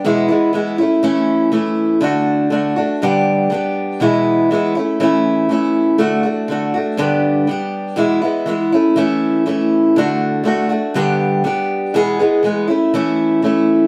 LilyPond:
\new Staff \with { instrumentName = "Steel-string acoustic guitar" } { \time 4/4 \key a \major \tempo 4 = 121 <e, b, e gis b e'>8 <e gis b e'>8 <e gis b e'>8 <a cis' e'>8 <e a cis' e'>4 <e a cis' e'>4 | <d a d' fis'>4 <d a d' fis'>8 <a d' fis'>8 <g, d g b d' g'>4 <g b d' g'>4 | <e, b, e gis b e'>4 <e gis b e'>8 <a cis' e'>8 <e a cis' e'>4 <e a cis' e'>4 | <d a d' fis'>8 <a d' fis'>8 <d a d' fis'>8 <a d' fis'>8 <g, d g b d' g'>4 <g b d' g'>4 |
<e, b, e gis b e'>8 <e gis b e'>8 <e gis b e'>8 <a cis' e'>8 <e a cis' e'>4 <e a cis' e'>4 | <d a d' fis'>4 <d a d' fis'>8 <a d' fis'>8 <g, d g b d' g'>4 <g b d' g'>4 | <e, b, e gis b gis'>8 <e gis b gis'>8 <e gis b gis'>8 <a cis' e'>8 <e a cis' e'>4 <e a cis' e'>4 | }